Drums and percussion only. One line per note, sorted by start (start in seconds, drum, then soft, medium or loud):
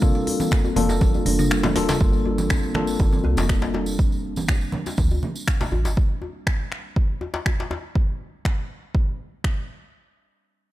0.02 kick loud
0.02 mid tom medium
0.02 tambourine medium
0.15 tambourine soft
0.27 open hi-hat medium
0.27 djembe tone medium
0.40 tambourine medium
0.40 high conga loud
0.51 finger snap loud
0.51 kick loud
0.51 tambourine medium
0.51 low conga medium
0.64 tambourine soft
0.64 djembe tone medium
0.76 open hi-hat loud
0.76 high conga loud
0.76 low conga loud
0.89 tambourine medium
0.89 djembe slap medium
1.01 kick loud
1.01 tambourine medium
1.01 high conga loud
1.14 tambourine soft
1.14 djembe tone medium
1.26 open hi-hat loud
1.26 high conga medium
1.26 low conga medium
1.39 mid tom loud
1.39 tambourine medium
1.50 finger snap loud
1.50 tambourine medium
1.63 high tom medium
1.63 tambourine soft
1.63 djembe slap loud
1.63 high conga medium
1.63 low conga loud
1.76 snare medium
1.76 open hi-hat loud
1.76 djembe tone medium
1.76 high conga medium
1.89 snare medium
1.89 mid tom loud
1.89 tambourine medium
1.89 djembe slap loud
2.00 kick loud
2.00 tambourine medium
2.13 tambourine soft
2.25 djembe tone medium
2.38 tambourine medium
2.38 high conga loud
2.49 finger snap loud
2.49 kick loud
2.49 tambourine medium
2.49 low conga medium
2.63 tambourine soft
2.75 finger snap medium
2.75 high conga loud
2.75 low conga loud
2.87 tambourine medium
2.99 kick loud
2.99 tambourine medium
2.99 high conga loud
3.13 tambourine soft
3.13 high conga medium
3.24 djembe tone medium
3.37 tambourine medium
3.37 djembe slap loud
3.37 high conga medium
3.49 finger snap loud
3.49 kick loud
3.49 tambourine medium
3.49 djembe tone medium
3.62 tambourine soft
3.62 djembe slap loud
3.74 djembe slap medium
3.74 djembe tone medium
3.86 tambourine medium
3.99 kick loud
3.99 tambourine medium
4.12 tambourine soft
4.36 tambourine medium
4.36 high conga medium
4.48 finger snap loud
4.48 kick loud
4.48 tambourine medium
4.48 low conga loud
4.61 tambourine soft
4.72 high conga loud
4.72 low conga loud
4.86 tambourine medium
4.86 djembe slap medium
4.97 kick loud
4.97 tambourine medium
4.97 high conga loud
5.10 tambourine soft
5.10 djembe tone medium
5.23 high conga medium
5.23 low conga loud
5.36 tambourine medium
5.48 finger snap loud
5.48 kick loud
5.48 tambourine medium
5.61 tambourine soft
5.61 djembe slap loud
5.61 low conga loud
5.72 djembe tone loud
5.85 tambourine medium
5.85 djembe slap loud
5.97 kick loud
6.22 djembe tone medium
6.47 finger snap loud
6.47 kick loud
6.72 finger snap medium
6.96 kick loud
7.21 djembe tone medium
7.34 djembe slap loud
7.46 finger snap loud
7.46 kick loud
7.46 djembe tone medium
7.60 djembe slap loud
7.71 djembe slap medium
7.71 djembe tone medium
7.95 kick loud
8.45 finger snap loud
8.45 kick loud
8.95 kick loud
9.44 finger snap loud
9.44 kick loud